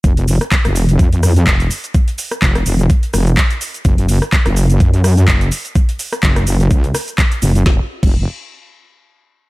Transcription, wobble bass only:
X:1
M:4/4
L:1/16
Q:"Swing 16ths" 1/4=126
K:Gblyd
V:1 name="Wobble bass" clef=bass
F,,,3 z2 F,,,3 F,,4 F,,,2 z2 | z4 F,,,2 F,,,2 z2 F,,,2 z4 | G,,,3 z2 G,,,3 G,,4 G,,,2 z2 | z4 G,,,2 G,,,2 D,,2 z4 G,,,2 |
F,,, z2 F,,,2 z8 z3 |]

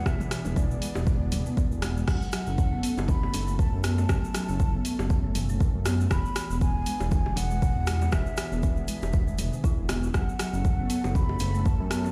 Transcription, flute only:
X:1
M:4/4
L:1/8
Q:"Swing 16ths" 1/4=119
K:F#m
V:1 name="Flute"
e2 d4- d z | f4 b2 a a- | a4- a z3 | b2 g2 g f3 |
e2 e4- e z | f4 b2 a a |]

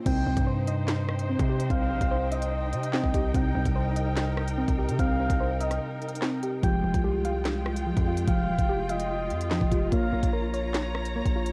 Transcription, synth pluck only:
X:1
M:4/4
L:1/8
Q:1/4=146
K:Cphr
V:1 name="Synth pluck"
C C c e3 C G | C C c e3 C G | C C c e3 C G | C C c e3 C G |
F, F, G f3 F, F | F, F, G f3 F, F | B, B, B d3 B, F |]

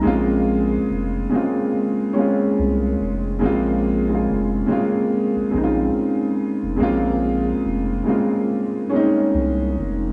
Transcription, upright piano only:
X:1
M:4/4
L:1/16
Q:"Swing 16ths" 1/4=71
K:Bbm
V:1 name="Upright piano"
[D,A,B,CF]4- [D,A,B,CF] z [D,A,B,CF]3 z [A,B,CDF]4- [A,B,CDF] z | [D,A,B,CF]2 z [D,A,B,CF]2 z [D,A,B,CF]3 z [D,A,B,CEF]4- [D,A,B,CEF] z | [D,A,B,CF]4- [D,A,B,CF] z [D,A,B,CF]3 z [A,B,CDE]4- [A,B,CDE] z |]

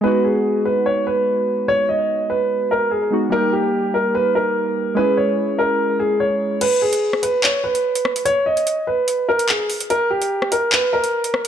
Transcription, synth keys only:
X:1
M:4/4
L:1/8
Q:1/4=146
K:G#m
V:1 name="Synth keys"
[G,B,DF]8- | [G,B,DF]6- [G,B,DF] [G,B,DF] | [=G,A,D=G]8 | [G,CEG]8 |
z8 | z8 | z8 |]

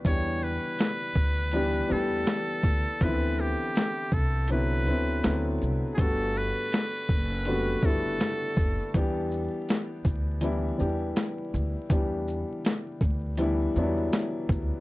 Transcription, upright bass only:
X:1
M:4/4
L:1/16
Q:"Swing 16ths" 1/4=81
K:Em
V:1 name="Upright bass" clef=bass
E,,3 z3 D,,4 E,,2 z2 D,, z | D,,3 z3 C,,4 D,,2 D,,2 C,, z | G,,,3 z3 F,,,4 G,,,2 z2 F,,, z | E,,3 z3 D,,4 E,,2 z2 D,, z |
E,,3 z3 D,,4 E,,2 z2 D,, z |]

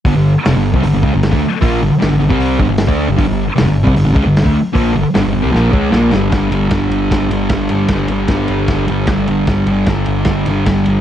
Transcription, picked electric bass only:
X:1
M:4/4
L:1/16
Q:1/4=153
K:Gm
V:1 name="Picked electric bass" clef=bass
G,,, G,,,2 z F,,, G,,,2 C,, G,,, G,,, ^C,, G,,,2 D,, z2 | B,,,2 G,,, z G,,, G,,, G,,, C,,3 G,,, G,,,2 D,,2 G,,, | G,,, G,,,2 z F,,, G,,,2 C,, G,,, G,,, ^C,, G,,,2 D,, z2 | B,,,2 G,,, z G,,, G,,, G,,, C,, B,,,2 ^C,,2 B,,,2 G,,,2 |
z2 G,,,2 G,,,2 G,,,2 G,,,2 G,,,2 G,,,2 G,,,2 | G,,,2 G,,,2 G,,,2 G,,,2 G,,,2 G,,,2 G,,,2 G,,,2 | G,,,2 G,,,2 G,,,2 G,,,2 G,,,2 G,,,2 G,,,2 G,,,2 |]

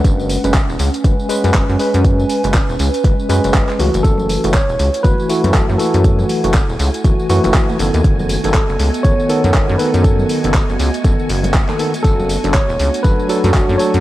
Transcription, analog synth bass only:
X:1
M:4/4
L:1/16
Q:"Swing 16ths" 1/4=120
K:A
V:1 name="Analog synth bass" clef=bass
F,,,3 F,,, z E,,, C,, z F,,, z2 F,, F,,, F,, z F,,- | F,,2 z F,,, z E,,, C,, z F,,, z F,, F,,, F,,, z C,, F,,, | F,,,3 F,,, z E,,, C,, z F,,, z2 F,, F,,, F,, z F,,- | F,,2 z F,,, z E,,, C,, z F,,, z F,, F,,, z2 F,,, ^D,, |
F,,,3 F,,, z F,,, C,, z F,,, z2 F,, F,,, F,, z F,,- | F,,2 z F,,, z F,,, C,, z F,,, z F,,,3 z3 | F,,,3 F,,, z E,,, C,, z F,,, z2 F,, F,,, F,, z F,, |]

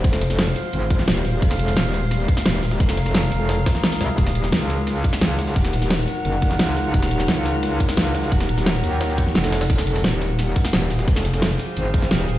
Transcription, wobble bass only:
X:1
M:4/4
L:1/8
Q:1/4=174
K:Fphr
V:1 name="Wobble bass" clef=bass
F,,,3 z A,,,2 E,,,2 | F,,,2 E,,,3 z E,,,2 | F,,,3 F,,,2 z2 C,, | E,,,2 D,,3 z D,,2 |
E,,,3 z G,,,2 D,,2 | E,,,2 D,,3 z D,,2 | E,,,3 E,,3 F,,,2 | F,,,2 E,,,3 z E,,,2 |
F,,,3 z A,,,2 E,,,2 |]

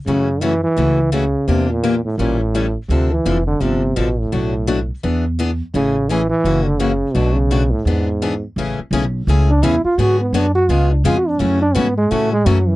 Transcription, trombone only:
X:1
M:4/4
L:1/8
Q:"Swing" 1/4=169
K:A
V:1 name="Trombone" clef=bass
C,2 E, E,3 C,2 | =C, _B,,2 A,, B,, A,,2 z | =C, E,2 D, C,2 B,, A,,- | A,,3 z4 z |
C,2 E, E,2 D, C,2 | B,, C,2 A,, G,,3 z | z4 z D E =F | F B, D F ^E D (3E F D |
C D B, G, A, G, F, E, |]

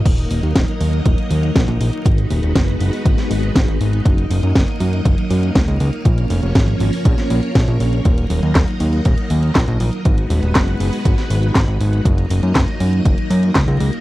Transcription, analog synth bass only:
X:1
M:4/4
L:1/16
Q:1/4=120
K:Ebm
V:1 name="Analog synth bass" clef=bass
E,,,2 E,,, E,, E,,, z E,,2 E,,, z E,,2 B,,, B,,, B,,, z | A,,,2 E,,, E,,, G,,,2 G,,, z A,,, z A,,,2 A,,, A,,, A,,,2 | G,,,2 G,,, G,, G,,, z G,,2 G,,, z G,,2 D,, D,, D,, z | B,,,2 F,,, F,,, A,,,2 A,,, z B,,, z B,,, z B,,, B,,, B,,,2 |
E,,,2 E,,, E,, E,,, z E,,2 E,,, z E,,2 B,,, B,,, B,,, z | A,,,2 E,,, E,,, G,,,2 G,,, z A,,, z A,,,2 A,,, A,,, A,,,2 | G,,,2 G,,, G,, G,,, z G,,2 G,,, z G,,2 D,, D,, D,, z |]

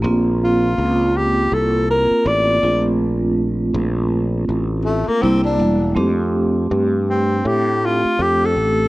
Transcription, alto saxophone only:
X:1
M:4/4
L:1/16
Q:"Swing 16ths" 1/4=81
K:F
V:1 name="Alto saxophone"
z2 F4 G2 A2 B2 d3 z | z16 | z6 C2 G2 F2 G A3 |]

